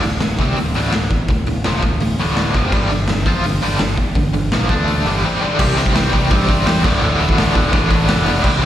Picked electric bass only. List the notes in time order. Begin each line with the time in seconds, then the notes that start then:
0.04 D1
0.22 D1
0.38 C2
0.58 D1
0.76 D1
0.94 D1
1.11 muted picked electric bass stroke
1.29 D1
1.47 D1
1.66 F1
1.83 D1
2.01 D1
2.18 D1
2.55 F1
2.73 G1
2.91 G1
3.09 G1
3.26 F2
3.45 G1
3.61 G1
3.79 G1
3.98 muted picked electric bass stroke
4.16 G1
4.34 G1
4.51 A#1
4.69 D2
5.06 G1
5.60 C2
5.95 C2
6.32 G2
6.66 E2
6.84 D1
7.02 D1
7.36 D1
7.73 A1
8.08 F1
8.44 C2